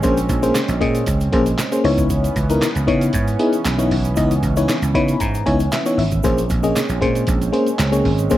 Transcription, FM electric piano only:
0.03 A#3 C#4 G#4 C5
0.42 A#3 C#4 G#4 C5
0.80 A#3 C#4 G#4 D#5
1.32 A#3 C#4 G#4 C5
1.72 A#3 C#4 G#4 C5
1.84 B3 D#4 E4 C#5
2.50 B3 D#4 E4 A#4
2.87 B3 D#4 E4 C#5
3.39 B3 D#4 E4 G#4
3.78 B3 D#4 E4 C#5
4.16 B3 D#4 E4 D#5
4.57 B3 D#4 E4 C#5
4.94 B3 D#4 E4 C#5 B5
5.21 A#5
5.46 B3 D#4 E4 C#5 G#5
5.72 E5
5.86 B3 D#4 E4 C#5
5.98 E5
6.24 A#3 C#4 G#4 C5
6.63 A#3 C#4 G#4 D#5
7.01 A#3 C#4 G#4 C5
7.52 A#3 C#4 G#4 C5
7.91 A#3 C#4 G#4 C#5
8.30 A#3 C#4 G#4 C5

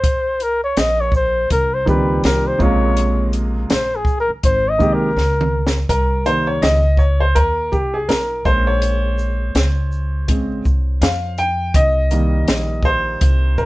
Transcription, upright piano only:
1.85 A#2 D#3 G3 C4 G4
2.58 C3 C#3 G#3 A#3 F4
4.78 D#3 G#3 A#3 C4 G4
5.89 A#4
6.26 D#3 G3 A#3 C5
6.47 C#5
6.62 D#5
6.99 C#5
7.20 C5
7.35 A#4
7.72 G4
7.94 G#4
8.09 A#4
8.45 G#3 C#4 C5
8.67 C#5
10.28 C#3 G#3 C4
11.02 F5
11.39 G5
11.76 D#5
12.11 D#3 G3 A#3
12.85 C5
13.58 A#4

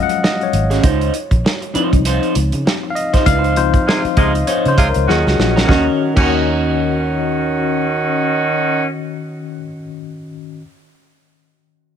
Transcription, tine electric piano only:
Already playing: F3 F#3 G#3 C#4 D#5 F5 F#5
0.03 F#5
0.24 D#5
0.43 C#5
1.73 F3 C4 D#4
2.90 F5
2.95 D#5
3.26 F5
3.56 F3 C4 D#4 C5
4.17 D#5
4.47 C#5
4.68 C5
4.89 A#4
5.08 F#3 C#4 F4 G#4
5.30 F#4
5.66 D#3 C#4 F#4
5.71 D#5
6.14 D#3 C#4 F#4
6.19 D#5

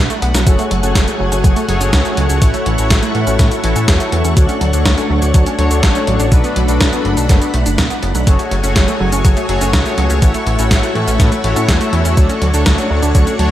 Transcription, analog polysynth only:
0.47 F#4 G#4 A4 C#5
0.83 F#4 G#4 A4 C#5
1.69 F#4 G#4 A4 C#5
2.42 E4 F#4 A4 C#5
2.78 E4 F#4 A4 C#5
3.64 E4 F#4 A4 C#5
4.37 D4 F#4 A4 C#5
4.73 D4 F#4 A4 C#5
5.59 D4 F#4 A4 C#5
6.32 D4 F#4 A4 B4
6.68 D4 F#4 A4 B4
8.27 F#4 G#4 A4 C#5
8.64 F#4 G#4 A4 C#5
9.49 F#4 G#4 A4 C#5
10.22 E4 F#4 A4 C#5
10.59 E4 F#4 A4 C#5
11.44 E4 F#4 A4 C#5
12.17 D4 F#4 A4 C#5
12.54 D4 F#4 A4 C#5
13.39 D4 F#4 A4 C#5

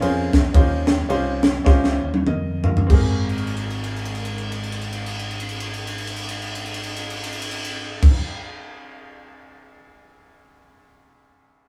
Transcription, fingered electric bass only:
0.02 F2
0.33 E2
0.55 D#2
1.09 C2
1.66 C#2
2.02 D#2
2.27 F2
2.90 G#1

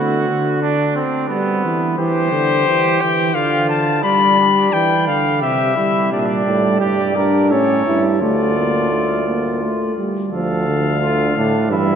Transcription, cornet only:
1.97 C5
3.01 G5
3.34 F5
3.69 A5
4.03 B5
4.72 G5
5.07 F5
5.42 E5
6.12 D5
6.19 E5
6.26 D5
6.81 D5
7.51 C#5
8.22 D5
10.33 F5
11.71 E5

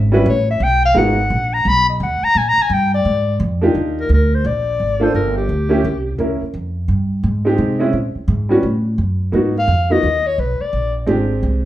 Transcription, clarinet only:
0.29 C#5
0.51 E5
0.63 G5
0.85 F5
0.98 F#5
1.54 A#5
1.68 B5
1.90 D#5
2.03 F#5
2.24 A#5
2.38 G#5
2.49 A#5
2.62 G#5
2.73 G5
2.94 D5
4.00 A#4
4.13 A#4
4.35 C5
4.46 D5
5.03 C5
5.15 A#4
5.37 G4
9.59 F5
9.92 D#5
10.27 C#5
10.40 B4
10.61 D5

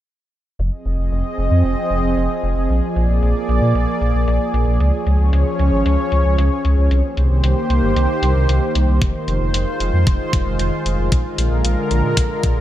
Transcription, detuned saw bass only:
0.59 F1
0.85 F1
0.98 F1
1.12 F1
1.38 F1
1.51 F2
1.64 F1
1.91 F1
2.04 F1
2.17 F1
2.43 F1
2.56 F1
2.70 A#1
2.96 A#1
3.09 A#1
3.22 A#1
3.49 A#1
3.62 A#2
3.75 A#1
4.01 A#1
4.14 A#1
4.28 A#1
4.54 A#1
4.67 A#1
4.80 C#2
5.06 C#2
5.20 C#2
5.33 C#2
5.59 C#2
5.72 G#1
5.86 C#2
6.12 C#2
6.25 C#2
6.38 C#2
6.65 C#2
6.78 C#2
6.91 C2
7.17 C2
7.30 C2
7.44 C2
7.70 C2
7.83 G1
7.96 C2
8.22 C2
8.36 C2
8.49 C2
8.75 C2
8.88 C2
9.02 F1
9.28 F1
9.41 F1
9.54 F1
9.80 F1
9.93 F2
10.07 F1
10.33 F1
10.46 F1
10.59 F1
10.86 F1
10.99 F1
11.12 A#1
11.38 A#1
11.51 A#1
11.64 A#1
11.91 A#1
12.04 A#2
12.17 A#1
12.43 A#1
12.57 A#1

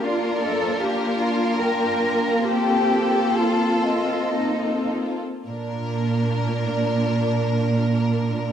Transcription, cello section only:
0.04 F4
0.41 A4
0.79 G4
1.19 F4
1.59 A#4
2.45 G4
3.35 F4
4.35 D#4
5.49 A#2

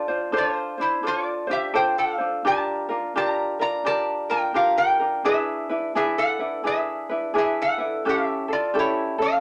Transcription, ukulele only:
0.08 D4 F4 C5
0.32 D4 F4 A4 C5
0.78 D4 C5
1.03 D4 F4 A4 C5
1.47 D4 F4 C5
1.74 D4 F4 A4 C5
2.18 D4 F4 C5
2.45 D4 F4 G4 A#4
2.89 D4 F4 A#4
3.16 D4 F4 G4 A#4
3.59 D4 F4 A#4
3.85 D4 F4 G4 A#4
4.30 D4 F4 A#4
4.54 D4 F4 G4 A#4
4.99 D4 F4 A#4
5.25 D4 E4 G#4 B4
5.69 D4 E4 B4
5.95 D4 E4 G#4 B4
6.39 D4 E4 B4
6.64 D4 E4 G#4 B4
7.10 D4 E4 B4
7.34 D4 E4 G#4 B4
7.78 D4 E4 B4
8.05 C#4 E4 G4 A4
8.48 A4
8.74 C#4 E4 G4 A4
9.18 C#4 A4

